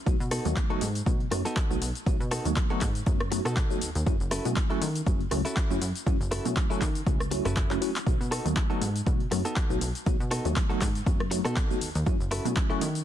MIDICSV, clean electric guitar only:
0, 0, Header, 1, 3, 480
1, 0, Start_track
1, 0, Tempo, 500000
1, 62, Time_signature, 4, 2, 24, 8
1, 12521, End_track
2, 0, Start_track
2, 0, Title_t, "Clean electric guitar"
2, 0, Program_c, 0, 27
2, 301, Note_on_c, 0, 69, 126
2, 305, Note_on_c, 0, 66, 89
2, 308, Note_on_c, 0, 63, 89
2, 310, Note_on_c, 0, 59, 87
2, 435, Note_off_c, 0, 59, 0
2, 436, Note_off_c, 0, 63, 0
2, 436, Note_off_c, 0, 66, 0
2, 437, Note_off_c, 0, 69, 0
2, 674, Note_on_c, 0, 69, 96
2, 679, Note_on_c, 0, 66, 85
2, 682, Note_on_c, 0, 63, 76
2, 686, Note_on_c, 0, 59, 75
2, 849, Note_off_c, 0, 59, 0
2, 850, Note_off_c, 0, 63, 0
2, 850, Note_off_c, 0, 66, 0
2, 850, Note_off_c, 0, 69, 0
2, 1394, Note_on_c, 0, 69, 90
2, 1399, Note_on_c, 0, 66, 78
2, 1401, Note_on_c, 0, 63, 70
2, 1404, Note_on_c, 0, 59, 87
2, 1809, Note_off_c, 0, 59, 0
2, 1809, Note_off_c, 0, 63, 0
2, 1810, Note_off_c, 0, 66, 0
2, 1810, Note_off_c, 0, 69, 0
2, 2220, Note_on_c, 0, 69, 118
2, 2223, Note_on_c, 0, 66, 97
2, 2225, Note_on_c, 0, 63, 97
2, 2229, Note_on_c, 0, 59, 99
2, 2355, Note_off_c, 0, 63, 0
2, 2356, Note_off_c, 0, 59, 0
2, 2356, Note_off_c, 0, 66, 0
2, 2356, Note_off_c, 0, 69, 0
2, 2595, Note_on_c, 0, 69, 96
2, 2599, Note_on_c, 0, 66, 82
2, 2604, Note_on_c, 0, 63, 70
2, 2605, Note_on_c, 0, 59, 78
2, 2770, Note_off_c, 0, 59, 0
2, 2770, Note_off_c, 0, 63, 0
2, 2770, Note_off_c, 0, 66, 0
2, 2771, Note_off_c, 0, 69, 0
2, 3314, Note_on_c, 0, 69, 93
2, 3321, Note_on_c, 0, 66, 74
2, 3324, Note_on_c, 0, 63, 73
2, 3328, Note_on_c, 0, 59, 70
2, 3730, Note_off_c, 0, 59, 0
2, 3730, Note_off_c, 0, 63, 0
2, 3731, Note_off_c, 0, 66, 0
2, 3731, Note_off_c, 0, 69, 0
2, 4139, Note_on_c, 0, 64, 96
2, 4145, Note_on_c, 0, 69, 116
2, 4149, Note_on_c, 0, 66, 81
2, 4152, Note_on_c, 0, 61, 96
2, 4276, Note_off_c, 0, 61, 0
2, 4276, Note_off_c, 0, 64, 0
2, 4276, Note_off_c, 0, 66, 0
2, 4277, Note_off_c, 0, 69, 0
2, 4511, Note_on_c, 0, 64, 83
2, 4517, Note_on_c, 0, 69, 97
2, 4522, Note_on_c, 0, 66, 72
2, 4524, Note_on_c, 0, 61, 79
2, 4688, Note_off_c, 0, 64, 0
2, 4689, Note_off_c, 0, 61, 0
2, 4689, Note_off_c, 0, 66, 0
2, 4689, Note_off_c, 0, 69, 0
2, 5231, Note_on_c, 0, 64, 76
2, 5238, Note_on_c, 0, 69, 79
2, 5242, Note_on_c, 0, 66, 71
2, 5245, Note_on_c, 0, 61, 77
2, 5649, Note_off_c, 0, 61, 0
2, 5649, Note_off_c, 0, 64, 0
2, 5650, Note_off_c, 0, 66, 0
2, 5650, Note_off_c, 0, 69, 0
2, 6060, Note_on_c, 0, 64, 105
2, 6063, Note_on_c, 0, 69, 116
2, 6067, Note_on_c, 0, 66, 100
2, 6071, Note_on_c, 0, 61, 105
2, 6195, Note_off_c, 0, 61, 0
2, 6195, Note_off_c, 0, 66, 0
2, 6195, Note_off_c, 0, 69, 0
2, 6196, Note_off_c, 0, 64, 0
2, 6433, Note_on_c, 0, 64, 82
2, 6439, Note_on_c, 0, 69, 103
2, 6442, Note_on_c, 0, 66, 74
2, 6447, Note_on_c, 0, 61, 76
2, 6609, Note_off_c, 0, 61, 0
2, 6610, Note_off_c, 0, 64, 0
2, 6610, Note_off_c, 0, 66, 0
2, 6610, Note_off_c, 0, 69, 0
2, 7154, Note_on_c, 0, 64, 75
2, 7158, Note_on_c, 0, 69, 85
2, 7162, Note_on_c, 0, 66, 70
2, 7165, Note_on_c, 0, 61, 80
2, 7569, Note_off_c, 0, 61, 0
2, 7570, Note_off_c, 0, 64, 0
2, 7570, Note_off_c, 0, 66, 0
2, 7570, Note_off_c, 0, 69, 0
2, 7980, Note_on_c, 0, 69, 122
2, 7982, Note_on_c, 0, 66, 99
2, 7985, Note_on_c, 0, 63, 95
2, 7987, Note_on_c, 0, 59, 94
2, 8115, Note_off_c, 0, 59, 0
2, 8115, Note_off_c, 0, 63, 0
2, 8116, Note_off_c, 0, 66, 0
2, 8116, Note_off_c, 0, 69, 0
2, 8350, Note_on_c, 0, 69, 100
2, 8353, Note_on_c, 0, 66, 78
2, 8355, Note_on_c, 0, 63, 75
2, 8359, Note_on_c, 0, 59, 81
2, 8526, Note_off_c, 0, 59, 0
2, 8527, Note_off_c, 0, 63, 0
2, 8527, Note_off_c, 0, 66, 0
2, 8528, Note_off_c, 0, 69, 0
2, 9072, Note_on_c, 0, 69, 91
2, 9074, Note_on_c, 0, 66, 75
2, 9078, Note_on_c, 0, 63, 74
2, 9081, Note_on_c, 0, 59, 83
2, 9487, Note_off_c, 0, 59, 0
2, 9487, Note_off_c, 0, 63, 0
2, 9488, Note_off_c, 0, 66, 0
2, 9488, Note_off_c, 0, 69, 0
2, 9898, Note_on_c, 0, 69, 118
2, 9900, Note_on_c, 0, 66, 94
2, 9903, Note_on_c, 0, 63, 94
2, 9906, Note_on_c, 0, 59, 100
2, 10034, Note_off_c, 0, 59, 0
2, 10034, Note_off_c, 0, 63, 0
2, 10034, Note_off_c, 0, 66, 0
2, 10035, Note_off_c, 0, 69, 0
2, 10267, Note_on_c, 0, 69, 92
2, 10270, Note_on_c, 0, 66, 77
2, 10275, Note_on_c, 0, 63, 75
2, 10278, Note_on_c, 0, 59, 79
2, 10445, Note_off_c, 0, 59, 0
2, 10446, Note_off_c, 0, 63, 0
2, 10446, Note_off_c, 0, 66, 0
2, 10446, Note_off_c, 0, 69, 0
2, 10988, Note_on_c, 0, 69, 100
2, 10995, Note_on_c, 0, 66, 75
2, 10999, Note_on_c, 0, 63, 77
2, 11003, Note_on_c, 0, 59, 75
2, 11407, Note_off_c, 0, 59, 0
2, 11407, Note_off_c, 0, 63, 0
2, 11408, Note_off_c, 0, 66, 0
2, 11408, Note_off_c, 0, 69, 0
2, 11818, Note_on_c, 0, 64, 99
2, 11823, Note_on_c, 0, 69, 127
2, 11826, Note_on_c, 0, 66, 91
2, 11828, Note_on_c, 0, 61, 96
2, 11955, Note_off_c, 0, 61, 0
2, 11955, Note_off_c, 0, 64, 0
2, 11955, Note_off_c, 0, 66, 0
2, 11955, Note_off_c, 0, 69, 0
2, 12188, Note_on_c, 0, 64, 89
2, 12191, Note_on_c, 0, 69, 101
2, 12197, Note_on_c, 0, 66, 77
2, 12199, Note_on_c, 0, 61, 83
2, 12366, Note_off_c, 0, 61, 0
2, 12367, Note_off_c, 0, 64, 0
2, 12367, Note_off_c, 0, 66, 0
2, 12367, Note_off_c, 0, 69, 0
2, 12521, End_track
3, 0, Start_track
3, 0, Title_t, "Muted clean electric guitar strokes"
3, 543, Note_on_c, 9, 29, 34
3, 639, Note_off_c, 9, 29, 0
3, 1022, Note_on_c, 9, 29, 33
3, 1118, Note_off_c, 9, 29, 0
3, 1261, Note_on_c, 9, 29, 119
3, 1357, Note_off_c, 9, 29, 0
3, 2944, Note_on_c, 9, 29, 35
3, 3040, Note_off_c, 9, 29, 0
3, 3183, Note_on_c, 9, 29, 118
3, 3279, Note_off_c, 9, 29, 0
3, 4860, Note_on_c, 9, 29, 33
3, 4956, Note_off_c, 9, 29, 0
3, 5099, Note_on_c, 9, 29, 99
3, 5195, Note_off_c, 9, 29, 0
3, 6781, Note_on_c, 9, 29, 34
3, 6877, Note_off_c, 9, 29, 0
3, 7020, Note_on_c, 9, 29, 107
3, 7116, Note_off_c, 9, 29, 0
3, 8699, Note_on_c, 9, 29, 34
3, 8795, Note_off_c, 9, 29, 0
3, 8939, Note_on_c, 9, 29, 97
3, 9035, Note_off_c, 9, 29, 0
3, 10138, Note_on_c, 9, 29, 35
3, 10234, Note_off_c, 9, 29, 0
3, 10616, Note_on_c, 9, 29, 33
3, 10712, Note_off_c, 9, 29, 0
3, 10858, Note_on_c, 9, 29, 105
3, 10954, Note_off_c, 9, 29, 0
3, 12057, Note_on_c, 9, 29, 34
3, 12153, Note_off_c, 9, 29, 0
3, 12521, End_track
0, 0, End_of_file